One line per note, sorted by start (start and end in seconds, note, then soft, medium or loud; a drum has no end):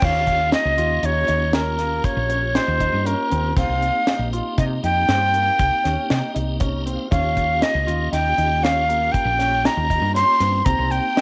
0.02 0.53 D#2 medium
0.02 3.53 A#3 medium
0.02 0.41 C#4 medium
0.02 3.53 C#4 soft
0.02 3.54 F4 soft
0.02 3.54 G4 medium
0.02 0.53 F5 medium
0.02 kick loud
0.02 crash medium
0.27 kick medium
0.27 closed hi-hat medium
0.52 0.72 D#4 medium
0.52 1.07 D#5 medium
0.52 snare loud
0.52 closed hi-hat medium
0.65 0.76 C#2 medium
0.78 0.99 D#2 medium
0.78 0.97 F4 medium
0.78 closed hi-hat medium
1.03 1.23 D#2 medium
1.03 1.23 D#4 medium
1.03 1.56 C#5 medium
1.03 closed hi-hat medium
1.28 1.99 D#2 medium
1.28 1.48 D#4 medium
1.28 closed hi-hat medium
1.53 1.73 C#4 medium
1.53 2.06 A#4 medium
1.53 snare medium
1.53 closed hi-hat medium
1.79 2.18 A#3 medium
1.79 snare soft
1.79 closed hi-hat medium
2.04 2.57 C#5 medium
2.04 kick medium
2.04 closed hi-hat medium
2.17 2.57 A#1 medium
2.29 2.49 C#4 medium
2.29 closed hi-hat medium
2.55 2.74 D#4 medium
2.55 3.08 C5 medium
2.55 snare loud
2.55 closed hi-hat medium
2.68 2.88 D#2 medium
2.80 3.00 D#4 medium
2.80 kick medium
2.80 closed hi-hat medium
2.93 3.14 G2 medium
3.05 3.25 C#4 medium
3.05 3.57 A#4 medium
3.05 closed hi-hat medium
3.30 3.52 D#2 medium
3.30 3.50 C4 medium
3.30 closed hi-hat medium
3.55 3.67 C2 medium
3.55 7.07 A#3 medium
3.55 3.95 C4 medium
3.55 7.08 C4 soft
3.55 7.08 D#4 soft
3.55 7.09 G4 medium
3.55 4.28 F5 medium
3.55 kick loud
3.55 closed hi-hat medium
3.69 3.89 C2 medium
3.82 closed hi-hat soft
4.07 4.27 D#4 medium
4.07 snare loud
4.07 closed hi-hat medium
4.19 4.40 A#1 medium
4.33 4.53 F4 medium
4.33 closed hi-hat medium
4.58 4.78 C3 medium
4.58 4.78 D#4 medium
4.58 4.65 D#5 medium
4.58 kick medium
4.58 closed hi-hat medium
4.83 5.04 F2 medium
4.83 5.03 D#4 medium
4.83 6.32 G5 loud
4.83 closed hi-hat medium
5.09 5.49 G2 medium
5.09 5.28 C4 medium
5.09 snare medium
5.09 closed hi-hat medium
5.34 5.73 A#3 medium
5.34 closed hi-hat medium
5.59 5.70 C2 medium
5.59 kick medium
5.59 closed hi-hat medium
5.84 5.95 D#2 medium
5.84 6.04 C#4 medium
5.84 snare soft
5.84 closed hi-hat medium
6.10 6.21 C3 medium
6.10 6.30 D#4 medium
6.10 snare medium
6.10 closed hi-hat medium
6.34 6.96 C2 medium
6.34 6.54 D#4 medium
6.34 closed hi-hat medium
6.60 6.80 C#4 medium
6.60 6.85 A#5 medium
6.60 kick medium
6.60 closed hi-hat medium
6.86 7.06 C4 medium
6.86 7.11 F5 medium
6.86 closed hi-hat medium
7.11 7.62 D#2 medium
7.11 10.62 A#3 medium
7.11 7.50 C#4 medium
7.11 10.62 C#4 soft
7.11 10.63 F4 soft
7.11 10.63 G4 medium
7.11 7.64 F5 medium
7.11 kick loud
7.11 closed hi-hat medium
7.37 kick medium
7.37 closed hi-hat soft
7.61 7.81 D#4 medium
7.61 8.12 D#5 medium
7.61 snare loud
7.61 closed hi-hat medium
7.75 7.85 C#2 medium
7.87 8.08 D#2 medium
7.87 8.07 F4 medium
7.87 closed hi-hat medium
8.12 8.33 D#2 medium
8.12 8.32 D#4 medium
8.12 8.65 G5 medium
8.12 snare soft
8.12 closed hi-hat medium
8.38 9.09 D#2 medium
8.38 8.57 D#4 medium
8.38 closed hi-hat medium
8.63 8.83 C#4 medium
8.63 9.13 F5 medium
8.63 snare medium
8.63 closed hi-hat medium
8.89 9.28 A#3 medium
8.89 closed hi-hat medium
9.12 9.67 G5 medium
9.12 kick loud
9.12 closed hi-hat medium
9.25 9.66 A#1 medium
9.39 9.59 C#4 medium
9.39 snare soft
9.39 closed hi-hat medium
9.65 9.84 D#4 medium
9.65 10.15 A#5 medium
9.65 snare loud
9.65 closed hi-hat medium
9.77 9.98 D#2 medium
9.90 10.09 D#4 medium
9.90 kick medium
9.90 closed hi-hat medium
10.01 10.22 G2 medium
10.15 10.35 C#4 medium
10.15 10.67 C6 loud
10.15 snare soft
10.15 closed hi-hat medium
10.40 10.61 G2 medium
10.40 10.60 C4 medium
10.40 snare soft
10.40 closed hi-hat medium
10.65 10.76 C2 medium
10.65 11.21 A#3 medium
10.65 11.05 C4 medium
10.65 11.21 C4 soft
10.65 11.21 D#4 medium
10.65 11.21 G4 medium
10.65 10.93 A#5 medium
10.65 kick loud
10.65 closed hi-hat medium
10.78 10.99 C2 medium
10.91 11.21 G5 medium
10.91 closed hi-hat soft
11.16 11.21 D#4 medium
11.16 snare loud
11.16 closed hi-hat medium